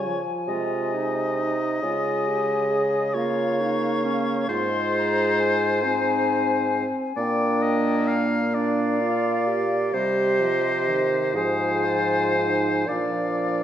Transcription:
Already playing: bassoon C#3, clarinet F4, oboe C#5, flute G#5
0.06 french horn F3
0.48 bassoon C3, french horn G#3, clarinet F4, oboe D#5
0.94 clarinet D#4
1.38 clarinet D#4
1.82 bassoon C#3, french horn G#3, clarinet F4, flute G#5
2.28 clarinet G4
2.70 clarinet G#4
3.14 french horn A#3, clarinet F4, oboe C#5, flute F5
3.60 clarinet D#4
4.04 clarinet C#4
4.48 bassoon G#2, french horn G#3, clarinet F4, oboe C5, flute C6
4.97 flute A#5
5.39 flute G#5
5.82 french horn C4, clarinet D#4
7.16 bassoon A#2, french horn A#3, clarinet D4, oboe D5, flute G5
7.62 oboe D#5
8.07 oboe F5
8.54 clarinet D4, oboe D5, flute F5
9.01 clarinet F4
9.47 clarinet G4
9.94 bassoon C3, french horn G3, oboe C5, flute D#5
10.40 french horn F3
10.88 french horn D#3
11.34 bassoon G#2, french horn F3, clarinet G#4, oboe C5, flute G#5
11.85 clarinet F4
12.35 clarinet D#4
12.86 bassoon A#2, clarinet D4, oboe D5, flute F5
12.91 french horn F3

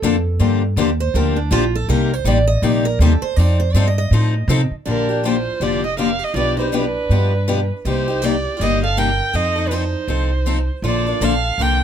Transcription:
Already playing: steel-string acoustic guitar A4
0.02 upright bass F2, steel-string acoustic guitar D3 F3 A#3 D4 A4
0.39 upright bass G2, steel-string acoustic guitar D3 F3 A#3 D4 G4
0.76 upright bass D#2, steel-string acoustic guitar D3 F3 A#3 D4 G4
1.00 steel-string acoustic guitar C5
1.14 upright bass D2, steel-string acoustic guitar D3 F3 A#3 D4 G4 A#4
1.36 steel-string acoustic guitar D4
1.51 upright bass A#1, steel-string acoustic guitar D3 F3 A#3 D4 F4 G4
1.75 steel-string acoustic guitar A4
1.88 upright bass C2, steel-string acoustic guitar C3 G3 A#3 D#4 G4 A#4
2.13 steel-string acoustic guitar C5
2.24 upright bass A1, steel-string acoustic guitar C3 G3 A#3 D#4 G4 D5
2.48 steel-string acoustic guitar D#5
2.62 upright bass A#1, steel-string acoustic guitar C3 G3 A#3 D#4 G4 D5
2.85 steel-string acoustic guitar A#4
2.99 upright bass D#2, steel-string acoustic guitar C3 G3 A#3 D#4 G4 A4
3.22 steel-string acoustic guitar C5, muted upright bass stroke
3.36 upright bass F2, steel-string acoustic guitar F3 C4 D#4 A4 D5
3.60 steel-string acoustic guitar C5
3.73 upright bass G2, steel-string acoustic guitar F3 C4 D#4 D5
3.77 steel-string acoustic guitar A4
3.88 steel-string acoustic guitar D#5
3.98 steel-string acoustic guitar D#5
4.11 upright bass A2, steel-string acoustic guitar F3 C4 D#4 A4
4.48 upright bass C3, steel-string acoustic guitar F3 C4 D#4 A4
4.71 muted upright bass stroke
4.86 upright bass A#1, steel-string acoustic guitar D3 F3 A#3 D4 G4, violin A#4
5.09 steel-string acoustic guitar A#3 D4 G4
5.24 steel-string acoustic guitar D3 F3 A#3 D4 F4 G4, violin C5
5.60 upright bass F1, steel-string acoustic guitar D3 F3 A#3 D4 F4 G4, violin D5
5.84 steel-string acoustic guitar G4, violin D#5
5.97 steel-string acoustic guitar D3 F3 A#3 D4 G4 A#4, violin F5
6.19 steel-string acoustic guitar G4
6.24 violin D#5
6.34 upright bass B1, steel-string acoustic guitar B2 F3 B3 D4 F4 G4 B4, violin D5
6.57 steel-string acoustic guitar D4 D#4 G4 B4, violin C5
6.61 steel-string acoustic guitar B3
6.72 steel-string acoustic guitar B2 F3 B3 D4 G4 B4, violin B4
7.09 upright bass G2, steel-string acoustic guitar B2 F3 B3 D4 G4 B4
7.48 steel-string acoustic guitar B2 F3 B3 D4 G4 B4
7.85 upright bass C2, steel-string acoustic guitar C3 G3 A#3 D#4 G4, violin C5
8.08 steel-string acoustic guitar A#3 D#4 G4
8.22 steel-string acoustic guitar C3 G3 A#3 D#4 G4, violin D5
8.57 upright bass G1, steel-string acoustic guitar F4, violin D5
8.61 steel-string acoustic guitar C3 G3 A#3 D#4 G4, violin D#5
8.84 steel-string acoustic guitar A4, violin F5
8.97 steel-string acoustic guitar C3 G3 A#3 D#4 G4 A#4, violin G5
9.33 upright bass F2, steel-string acoustic guitar F3 C4 D#4 A4, violin D#5
9.56 steel-string acoustic guitar C4 D#4 A4
9.67 steel-string acoustic guitar D4, violin B4
9.71 steel-string acoustic guitar F3 C4 D#4 A4, violin C5
10.07 upright bass C2, steel-string acoustic guitar F3 C4 D#4 A4
10.46 steel-string acoustic guitar F3 C4 D#4 A4
10.82 upright bass A#1, steel-string acoustic guitar D3 F3 A#3 D4 F4 A4
10.86 violin D5
11.07 steel-string acoustic guitar A#3 D4 A4
11.21 upright bass A#1, steel-string acoustic guitar D3 F3 A#3 D4 A4, violin F5
11.58 upright bass C2, steel-string acoustic guitar D3 F3 A#3 D4 A4 A#4
11.62 violin G5

